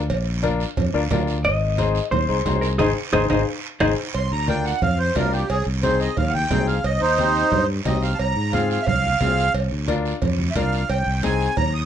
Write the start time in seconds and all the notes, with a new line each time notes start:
Already playing: D2
0.10 A#1, cowbell, long guiro
0.43 D4 F4 A#4, cowbell, high conga, short guiro
0.60 short guiro
0.77 F2, cowbell, low conga, long guiro
0.94 D2 D4 F4 A#4
1.11 D2 D4 F4 A#4, cowbell, high conga, low conga, low timbale, short guiro
1.27 short guiro
1.44 G#1 D#5, cowbell, long guiro
1.78 D#4 G#4 C5, cowbell, high conga, short guiro
1.95 short guiro
2.11 D#2 C5, cowbell, low conga, long guiro
2.29 C2 D#4 G#4 C5
2.45 C2 D#4 G#4 C5, cowbell, high conga, low timbale, short guiro
2.61 A#4, short guiro
2.78 G#1 D#4 G#4 C5 D#5, high conga, high timbale, long guiro
3.13 G#1 D#4 G#4 C5 D#5, high conga, high timbale, long guiro
3.30 G#1 D#4 G#4 C5 D#5, high conga, high timbale, long guiro
3.80 G#1 D#4 G#4 C5 D#5, high conga, high timbale, long guiro
4.14 C2 C6, cowbell, long guiro
4.32 D2 A#5
4.48 D4 F4 A#4 G5, cowbell, high conga, short guiro
4.65 F#5, short guiro
4.82 F2 F5, cowbell, low conga, long guiro
4.99 C5
5.15 C2 D4 F4 A#4, cowbell, high conga, low timbale, short guiro
5.33 G4, short guiro
5.49 C2 G#4, cowbell, long guiro
5.66 C2
5.83 C4 D#4 G#4 C5, cowbell, high conga, short guiro
6.00 D#5, short guiro
6.17 D#2 F5, cowbell, low conga, long guiro
6.30 F#5, high conga
6.34 G5
6.50 C2 C4 D#4 G#4, cowbell, high conga, low conga, low timbale, short guiro
6.67 F5, short guiro
6.84 C2 D#5, cowbell, long guiro
7.01 D#2 D#4 C5
7.18 C4 D#4 G4, cowbell, high conga, short guiro
7.35 short guiro
7.52 G2, cowbell, low conga, long guiro
7.85 C2 C4 D#4 G4 D#5, cowbell, high conga, low timbale, short guiro
8.02 F5, short guiro
8.15 A5
8.19 C2 A#5, cowbell, long guiro
8.36 G#2
8.53 C4 F4 G#4 F5, cowbell, high conga, short guiro
8.70 F5, short guiro
8.82 E5, cowbell
8.87 C2 F5, low conga, long guiro
9.04 high conga
9.20 C2 C4 F4 G#4, cowbell, high conga, low timbale, short guiro
9.38 short guiro
9.54 C2, cowbell, long guiro
9.71 D2
9.88 D4 F4 A#4, cowbell, high conga, short guiro
10.05 short guiro
10.22 F2, cowbell, low conga, long guiro
10.39 high conga
10.51 E5
10.55 C2 D4 F4 A#4 F5, cowbell, high conga, short guiro
10.73 short guiro
10.89 C2 G5, cowbell, long guiro
11.06 C2
11.23 C4 D#4 G#4 G#5, cowbell, high conga, short guiro
11.40 short guiro
11.57 D#2 A#5, cowbell, low conga, long guiro
11.74 D#6